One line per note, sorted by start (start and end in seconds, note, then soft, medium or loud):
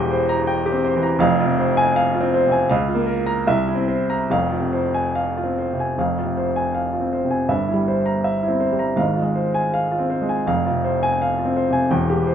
0.00 1.17 E1 medium
0.00 1.17 E2 medium
0.00 0.38 E3 medium
0.00 0.22 G4 medium
0.00 0.47 G5 medium
0.11 0.40 C5 medium
0.29 0.58 A#5 medium
0.47 0.76 G5 medium
0.66 0.95 G4 medium
0.72 1.10 C4 medium
0.85 1.13 C5 medium
0.96 1.20 E3 medium
1.03 1.21 A#5 medium
1.19 2.64 F1 medium
1.19 2.64 F2 medium
1.19 1.50 F5 medium
1.40 1.69 F4 medium
1.46 1.85 C3 medium
1.59 1.88 C5 medium
1.77 2.06 G#5 loud
1.96 2.25 F5 medium
2.14 2.43 F4 medium
2.21 2.59 C4 medium
2.34 2.62 C5 medium
2.47 2.70 C3 medium
2.52 2.69 G#5 medium
2.69 3.43 C#2 medium
2.69 2.99 F5 medium
2.89 3.18 F4 medium
2.95 3.35 A#3 medium
3.06 3.37 A#4 medium
3.26 3.45 A#5 medium
3.47 4.27 C2 medium
3.47 3.79 E5 medium
3.67 3.99 E4 medium
3.75 4.18 C4 medium
3.88 4.21 C5 medium
4.10 4.30 A#5 medium
4.30 5.95 F1 medium
4.30 5.95 F2 medium
4.30 4.64 F5 medium
4.52 4.85 F4 medium
4.60 5.05 C3 soft
4.73 5.07 C5 medium
4.94 5.28 G#5 medium
5.15 5.49 F5 medium
5.37 5.71 F4 medium
5.44 5.88 C4 medium
5.59 5.91 C5 soft
5.73 5.99 C3 soft
5.80 5.99 G#5 medium
5.98 7.45 F1 medium
5.98 7.46 F2 medium
5.98 6.29 F5 medium
6.19 6.49 F4 soft
6.24 6.65 C3 soft
6.37 6.67 C5 soft
6.56 6.86 G#5 medium
6.75 7.04 F5 medium
6.93 7.23 F4 soft
7.00 7.40 C4 soft
7.13 7.42 C5 medium
7.24 7.49 C3 soft
7.31 7.49 G#5 medium
7.48 8.94 G1 medium
7.48 8.94 G2 medium
7.48 7.79 E5 medium
7.68 7.98 E4 medium
7.74 8.13 G3 soft
7.88 8.17 C5 medium
8.06 8.35 A#5 medium
8.24 8.54 E5 medium
8.43 8.72 E4 medium
8.48 8.88 C4 medium
8.60 8.90 C5 medium
8.72 8.98 G3 soft
8.79 8.98 A#5 medium
8.96 10.39 G#1 medium
8.96 10.40 G#2 medium
8.96 9.27 F5 medium
9.16 9.46 F4 medium
9.22 9.62 G#3 medium
9.35 9.65 C5 medium
9.54 9.83 G#5 medium
9.74 10.02 F5 medium
9.92 10.20 F4 medium
9.99 10.36 C4 medium
10.10 10.38 C5 medium
10.22 10.45 G#3 medium
10.29 10.46 G#5 medium
10.47 11.87 F1 medium
10.47 11.87 F2 medium
10.47 10.75 F5 medium
10.66 10.94 F4 medium
10.71 11.09 C3 soft
10.84 11.12 C5 medium
11.03 11.30 G#5 medium
11.22 11.48 F5 medium
11.39 11.66 F4 medium
11.45 11.82 C4 medium
11.57 11.84 C5 medium
11.69 11.91 C3 medium
11.73 11.90 G#5 medium
11.91 12.35 E1 medium
11.91 12.35 E2 medium
11.91 12.20 G5 medium
12.10 12.35 G4 medium
12.14 12.35 E3 medium
12.27 12.35 C5 medium